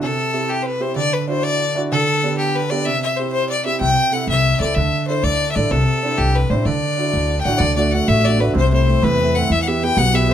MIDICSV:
0, 0, Header, 1, 4, 480
1, 0, Start_track
1, 0, Tempo, 315956
1, 24, Time_signature, 6, 3, 24, 8
1, 15705, End_track
2, 0, Start_track
2, 0, Title_t, "Fiddle"
2, 0, Program_c, 0, 110
2, 41, Note_on_c, 0, 69, 97
2, 751, Note_on_c, 0, 67, 98
2, 774, Note_off_c, 0, 69, 0
2, 941, Note_on_c, 0, 72, 47
2, 964, Note_off_c, 0, 67, 0
2, 999, Note_on_c, 0, 71, 74
2, 1022, Note_off_c, 0, 72, 0
2, 1241, Note_on_c, 0, 72, 74
2, 1264, Note_off_c, 0, 71, 0
2, 1449, Note_off_c, 0, 72, 0
2, 1458, Note_on_c, 0, 74, 95
2, 1725, Note_on_c, 0, 71, 78
2, 1748, Note_off_c, 0, 74, 0
2, 1950, Note_off_c, 0, 71, 0
2, 1959, Note_on_c, 0, 72, 79
2, 2177, Note_on_c, 0, 74, 97
2, 2200, Note_off_c, 0, 72, 0
2, 2726, Note_off_c, 0, 74, 0
2, 2917, Note_on_c, 0, 69, 106
2, 3580, Note_off_c, 0, 69, 0
2, 3619, Note_on_c, 0, 67, 96
2, 3880, Note_on_c, 0, 71, 90
2, 3903, Note_off_c, 0, 67, 0
2, 4101, Note_on_c, 0, 74, 98
2, 4124, Note_off_c, 0, 71, 0
2, 4343, Note_on_c, 0, 76, 117
2, 4366, Note_off_c, 0, 74, 0
2, 4592, Note_off_c, 0, 76, 0
2, 4601, Note_on_c, 0, 76, 82
2, 4811, Note_on_c, 0, 72, 79
2, 4834, Note_off_c, 0, 76, 0
2, 5041, Note_off_c, 0, 72, 0
2, 5050, Note_on_c, 0, 72, 99
2, 5295, Note_off_c, 0, 72, 0
2, 5311, Note_on_c, 0, 74, 93
2, 5532, Note_off_c, 0, 74, 0
2, 5550, Note_on_c, 0, 76, 92
2, 5767, Note_off_c, 0, 76, 0
2, 5779, Note_on_c, 0, 79, 109
2, 6277, Note_on_c, 0, 78, 99
2, 6300, Note_off_c, 0, 79, 0
2, 6508, Note_off_c, 0, 78, 0
2, 6518, Note_on_c, 0, 76, 119
2, 6967, Note_off_c, 0, 76, 0
2, 6993, Note_on_c, 0, 74, 93
2, 7209, Note_on_c, 0, 76, 100
2, 7232, Note_off_c, 0, 74, 0
2, 7702, Note_off_c, 0, 76, 0
2, 7711, Note_on_c, 0, 72, 91
2, 7955, Note_on_c, 0, 74, 113
2, 7977, Note_off_c, 0, 72, 0
2, 8370, Note_off_c, 0, 74, 0
2, 8379, Note_on_c, 0, 76, 65
2, 8436, Note_on_c, 0, 74, 92
2, 8459, Note_off_c, 0, 76, 0
2, 8679, Note_on_c, 0, 69, 96
2, 8702, Note_off_c, 0, 74, 0
2, 9387, Note_on_c, 0, 67, 107
2, 9410, Note_off_c, 0, 69, 0
2, 9647, Note_on_c, 0, 71, 92
2, 9670, Note_off_c, 0, 67, 0
2, 9878, Note_on_c, 0, 72, 77
2, 9901, Note_off_c, 0, 71, 0
2, 10112, Note_on_c, 0, 74, 91
2, 10135, Note_off_c, 0, 72, 0
2, 11243, Note_off_c, 0, 74, 0
2, 11252, Note_on_c, 0, 79, 71
2, 11305, Note_on_c, 0, 78, 96
2, 11327, Note_off_c, 0, 79, 0
2, 11526, Note_on_c, 0, 74, 118
2, 11549, Note_off_c, 0, 78, 0
2, 11783, Note_off_c, 0, 74, 0
2, 11792, Note_on_c, 0, 74, 83
2, 12022, Note_on_c, 0, 78, 99
2, 12045, Note_off_c, 0, 74, 0
2, 12273, Note_on_c, 0, 76, 115
2, 12295, Note_off_c, 0, 78, 0
2, 12528, Note_on_c, 0, 74, 103
2, 12551, Note_off_c, 0, 76, 0
2, 12764, Note_on_c, 0, 71, 85
2, 12787, Note_off_c, 0, 74, 0
2, 12993, Note_off_c, 0, 71, 0
2, 13002, Note_on_c, 0, 72, 108
2, 13234, Note_off_c, 0, 72, 0
2, 13275, Note_on_c, 0, 72, 93
2, 13723, Note_on_c, 0, 71, 107
2, 13746, Note_off_c, 0, 72, 0
2, 14203, Note_on_c, 0, 78, 99
2, 14225, Note_off_c, 0, 71, 0
2, 14457, Note_on_c, 0, 76, 120
2, 14480, Note_off_c, 0, 78, 0
2, 14610, Note_off_c, 0, 76, 0
2, 14619, Note_on_c, 0, 78, 65
2, 14698, Note_on_c, 0, 76, 94
2, 14720, Note_off_c, 0, 78, 0
2, 14937, Note_on_c, 0, 79, 108
2, 14960, Note_off_c, 0, 76, 0
2, 15158, Note_on_c, 0, 78, 127
2, 15181, Note_off_c, 0, 79, 0
2, 15416, Note_on_c, 0, 76, 110
2, 15439, Note_off_c, 0, 78, 0
2, 15684, Note_off_c, 0, 76, 0
2, 15705, End_track
3, 0, Start_track
3, 0, Title_t, "Upright piano"
3, 0, Program_c, 1, 0
3, 26, Note_on_c, 1, 48, 67
3, 507, Note_on_c, 1, 60, 36
3, 510, Note_on_c, 1, 64, 33
3, 513, Note_on_c, 1, 67, 44
3, 983, Note_off_c, 1, 60, 0
3, 984, Note_off_c, 1, 64, 0
3, 985, Note_off_c, 1, 67, 0
3, 1219, Note_on_c, 1, 60, 45
3, 1226, Note_on_c, 1, 67, 53
3, 1231, Note_on_c, 1, 64, 41
3, 1421, Note_off_c, 1, 48, 0
3, 1450, Note_off_c, 1, 60, 0
3, 1453, Note_off_c, 1, 67, 0
3, 1453, Note_on_c, 1, 50, 57
3, 1456, Note_off_c, 1, 64, 0
3, 1938, Note_on_c, 1, 62, 43
3, 1945, Note_on_c, 1, 64, 40
3, 1952, Note_on_c, 1, 66, 40
3, 2418, Note_off_c, 1, 62, 0
3, 2421, Note_off_c, 1, 64, 0
3, 2425, Note_off_c, 1, 66, 0
3, 2661, Note_on_c, 1, 64, 46
3, 2662, Note_on_c, 1, 62, 49
3, 2675, Note_on_c, 1, 66, 55
3, 2855, Note_off_c, 1, 50, 0
3, 2891, Note_off_c, 1, 62, 0
3, 2891, Note_off_c, 1, 64, 0
3, 2898, Note_off_c, 1, 66, 0
3, 2913, Note_on_c, 1, 50, 73
3, 3391, Note_on_c, 1, 59, 37
3, 3400, Note_on_c, 1, 62, 37
3, 3405, Note_on_c, 1, 67, 48
3, 3865, Note_off_c, 1, 59, 0
3, 3869, Note_off_c, 1, 62, 0
3, 3872, Note_off_c, 1, 67, 0
3, 4114, Note_on_c, 1, 59, 47
3, 4117, Note_on_c, 1, 62, 44
3, 4126, Note_on_c, 1, 67, 55
3, 4305, Note_off_c, 1, 50, 0
3, 4338, Note_off_c, 1, 59, 0
3, 4340, Note_off_c, 1, 62, 0
3, 4344, Note_off_c, 1, 67, 0
3, 4351, Note_on_c, 1, 48, 61
3, 4843, Note_on_c, 1, 60, 38
3, 4850, Note_on_c, 1, 64, 35
3, 4852, Note_on_c, 1, 67, 45
3, 5312, Note_off_c, 1, 60, 0
3, 5316, Note_off_c, 1, 64, 0
3, 5316, Note_off_c, 1, 67, 0
3, 5536, Note_on_c, 1, 60, 51
3, 5544, Note_on_c, 1, 64, 46
3, 5560, Note_on_c, 1, 67, 51
3, 5744, Note_off_c, 1, 48, 0
3, 5767, Note_on_c, 1, 48, 74
3, 5769, Note_off_c, 1, 60, 0
3, 5774, Note_off_c, 1, 64, 0
3, 5782, Note_off_c, 1, 67, 0
3, 6247, Note_on_c, 1, 60, 36
3, 6254, Note_on_c, 1, 64, 38
3, 6260, Note_on_c, 1, 69, 40
3, 6734, Note_off_c, 1, 60, 0
3, 6738, Note_off_c, 1, 64, 0
3, 6741, Note_off_c, 1, 69, 0
3, 6985, Note_on_c, 1, 60, 46
3, 6998, Note_on_c, 1, 69, 58
3, 6999, Note_on_c, 1, 64, 48
3, 7175, Note_off_c, 1, 48, 0
3, 7215, Note_off_c, 1, 60, 0
3, 7222, Note_off_c, 1, 64, 0
3, 7222, Note_off_c, 1, 69, 0
3, 7243, Note_on_c, 1, 50, 67
3, 7722, Note_on_c, 1, 62, 35
3, 7735, Note_on_c, 1, 64, 37
3, 7736, Note_on_c, 1, 69, 47
3, 8194, Note_off_c, 1, 62, 0
3, 8200, Note_off_c, 1, 64, 0
3, 8201, Note_off_c, 1, 69, 0
3, 8438, Note_on_c, 1, 62, 51
3, 8445, Note_on_c, 1, 64, 47
3, 8458, Note_on_c, 1, 69, 52
3, 8635, Note_off_c, 1, 50, 0
3, 8663, Note_off_c, 1, 62, 0
3, 8667, Note_off_c, 1, 64, 0
3, 8674, Note_off_c, 1, 69, 0
3, 8674, Note_on_c, 1, 48, 74
3, 9159, Note_on_c, 1, 60, 44
3, 9160, Note_on_c, 1, 62, 38
3, 9166, Note_on_c, 1, 64, 43
3, 9633, Note_off_c, 1, 60, 0
3, 9633, Note_off_c, 1, 62, 0
3, 9636, Note_off_c, 1, 64, 0
3, 9871, Note_on_c, 1, 62, 46
3, 9875, Note_on_c, 1, 60, 51
3, 9890, Note_on_c, 1, 64, 57
3, 10070, Note_off_c, 1, 48, 0
3, 10100, Note_off_c, 1, 62, 0
3, 10102, Note_off_c, 1, 60, 0
3, 10110, Note_off_c, 1, 64, 0
3, 10122, Note_on_c, 1, 50, 68
3, 10597, Note_on_c, 1, 62, 36
3, 10608, Note_on_c, 1, 64, 39
3, 10611, Note_on_c, 1, 66, 39
3, 11072, Note_off_c, 1, 62, 0
3, 11077, Note_off_c, 1, 64, 0
3, 11079, Note_off_c, 1, 66, 0
3, 11324, Note_on_c, 1, 62, 48
3, 11331, Note_on_c, 1, 64, 46
3, 11333, Note_on_c, 1, 66, 52
3, 11514, Note_off_c, 1, 50, 0
3, 11547, Note_off_c, 1, 62, 0
3, 11548, Note_on_c, 1, 50, 69
3, 11550, Note_off_c, 1, 64, 0
3, 11551, Note_off_c, 1, 66, 0
3, 11788, Note_on_c, 1, 57, 48
3, 11802, Note_on_c, 1, 66, 54
3, 11804, Note_on_c, 1, 62, 49
3, 12016, Note_off_c, 1, 62, 0
3, 12022, Note_off_c, 1, 57, 0
3, 12023, Note_off_c, 1, 50, 0
3, 12026, Note_off_c, 1, 66, 0
3, 12039, Note_on_c, 1, 62, 37
3, 12045, Note_on_c, 1, 57, 41
3, 12049, Note_on_c, 1, 66, 51
3, 12249, Note_off_c, 1, 57, 0
3, 12272, Note_on_c, 1, 57, 73
3, 12429, Note_off_c, 1, 62, 0
3, 12435, Note_off_c, 1, 66, 0
3, 12505, Note_off_c, 1, 57, 0
3, 12528, Note_on_c, 1, 57, 49
3, 12537, Note_on_c, 1, 66, 46
3, 12538, Note_on_c, 1, 62, 41
3, 12723, Note_off_c, 1, 57, 0
3, 12727, Note_off_c, 1, 62, 0
3, 12728, Note_off_c, 1, 66, 0
3, 12746, Note_on_c, 1, 57, 56
3, 12750, Note_on_c, 1, 62, 48
3, 12750, Note_on_c, 1, 66, 59
3, 12936, Note_off_c, 1, 57, 0
3, 12939, Note_off_c, 1, 62, 0
3, 12939, Note_off_c, 1, 66, 0
3, 12968, Note_on_c, 1, 48, 80
3, 13233, Note_on_c, 1, 57, 43
3, 13238, Note_on_c, 1, 60, 50
3, 13247, Note_on_c, 1, 64, 57
3, 13452, Note_off_c, 1, 48, 0
3, 13465, Note_off_c, 1, 57, 0
3, 13465, Note_off_c, 1, 60, 0
3, 13468, Note_off_c, 1, 64, 0
3, 13488, Note_on_c, 1, 57, 47
3, 13488, Note_on_c, 1, 60, 41
3, 13490, Note_on_c, 1, 64, 49
3, 13707, Note_on_c, 1, 48, 75
3, 13873, Note_off_c, 1, 60, 0
3, 13874, Note_off_c, 1, 57, 0
3, 13875, Note_off_c, 1, 64, 0
3, 13967, Note_on_c, 1, 57, 42
3, 13971, Note_on_c, 1, 64, 48
3, 13982, Note_on_c, 1, 60, 42
3, 14181, Note_off_c, 1, 48, 0
3, 14189, Note_off_c, 1, 57, 0
3, 14191, Note_off_c, 1, 60, 0
3, 14198, Note_off_c, 1, 64, 0
3, 14211, Note_on_c, 1, 57, 62
3, 14214, Note_on_c, 1, 60, 55
3, 14221, Note_on_c, 1, 64, 57
3, 14390, Note_off_c, 1, 57, 0
3, 14392, Note_off_c, 1, 60, 0
3, 14396, Note_off_c, 1, 64, 0
3, 14439, Note_on_c, 1, 52, 72
3, 14691, Note_on_c, 1, 59, 52
3, 14694, Note_on_c, 1, 64, 44
3, 14706, Note_on_c, 1, 67, 62
3, 14906, Note_off_c, 1, 52, 0
3, 14906, Note_off_c, 1, 64, 0
3, 14908, Note_off_c, 1, 59, 0
3, 14929, Note_off_c, 1, 67, 0
3, 14929, Note_on_c, 1, 64, 41
3, 14931, Note_on_c, 1, 59, 52
3, 14952, Note_on_c, 1, 67, 56
3, 15149, Note_on_c, 1, 47, 70
3, 15313, Note_off_c, 1, 64, 0
3, 15314, Note_off_c, 1, 59, 0
3, 15326, Note_off_c, 1, 67, 0
3, 15385, Note_on_c, 1, 59, 49
3, 15399, Note_on_c, 1, 64, 43
3, 15405, Note_on_c, 1, 67, 56
3, 15595, Note_off_c, 1, 59, 0
3, 15604, Note_off_c, 1, 64, 0
3, 15611, Note_off_c, 1, 67, 0
3, 15618, Note_on_c, 1, 59, 57
3, 15620, Note_off_c, 1, 47, 0
3, 15627, Note_on_c, 1, 64, 54
3, 15634, Note_on_c, 1, 67, 64
3, 15705, Note_off_c, 1, 59, 0
3, 15705, Note_off_c, 1, 64, 0
3, 15705, Note_off_c, 1, 67, 0
3, 15705, End_track
4, 0, Start_track
4, 0, Title_t, "Upright bass"
4, 0, Program_c, 2, 32
4, 5783, Note_on_c, 2, 36, 77
4, 5996, Note_off_c, 2, 36, 0
4, 6491, Note_on_c, 2, 36, 71
4, 6901, Note_off_c, 2, 36, 0
4, 6988, Note_on_c, 2, 37, 76
4, 7183, Note_off_c, 2, 37, 0
4, 7234, Note_on_c, 2, 38, 76
4, 7443, Note_off_c, 2, 38, 0
4, 7947, Note_on_c, 2, 38, 83
4, 8351, Note_off_c, 2, 38, 0
4, 8445, Note_on_c, 2, 33, 79
4, 8634, Note_off_c, 2, 33, 0
4, 8675, Note_on_c, 2, 36, 67
4, 8885, Note_off_c, 2, 36, 0
4, 9392, Note_on_c, 2, 36, 78
4, 9794, Note_off_c, 2, 36, 0
4, 9871, Note_on_c, 2, 33, 88
4, 10066, Note_off_c, 2, 33, 0
4, 10107, Note_on_c, 2, 38, 78
4, 10321, Note_off_c, 2, 38, 0
4, 10840, Note_on_c, 2, 38, 81
4, 11239, Note_off_c, 2, 38, 0
4, 11320, Note_on_c, 2, 33, 69
4, 11511, Note_off_c, 2, 33, 0
4, 11544, Note_on_c, 2, 38, 94
4, 12141, Note_off_c, 2, 38, 0
4, 12276, Note_on_c, 2, 33, 96
4, 12867, Note_off_c, 2, 33, 0
4, 12994, Note_on_c, 2, 36, 84
4, 13586, Note_off_c, 2, 36, 0
4, 13710, Note_on_c, 2, 40, 107
4, 14303, Note_off_c, 2, 40, 0
4, 14429, Note_on_c, 2, 40, 89
4, 15021, Note_off_c, 2, 40, 0
4, 15142, Note_on_c, 2, 35, 95
4, 15705, Note_off_c, 2, 35, 0
4, 15705, End_track
0, 0, End_of_file